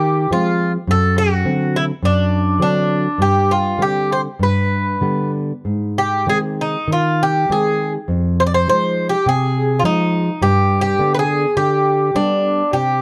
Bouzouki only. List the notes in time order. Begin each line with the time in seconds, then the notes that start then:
Already playing: G4
0.33 F4
0.91 A4
1.18 F#4
1.76 E4
2.05 D4
2.62 D4
3.22 G4
3.51 F4
3.82 G4
4.12 C5
4.43 B4
5.98 G4
6.29 G#4
6.61 D#4
6.92 F4
7.23 G4
7.52 G#4
8.40 C5
8.46 D5
8.54 C5
8.69 C5
9.09 G4
9.29 G#4
9.79 F4
9.85 D#4
10.42 G4
10.81 G4
11.15 B4
11.19 G#4
11.57 G4
12.16 D4
12.73 G4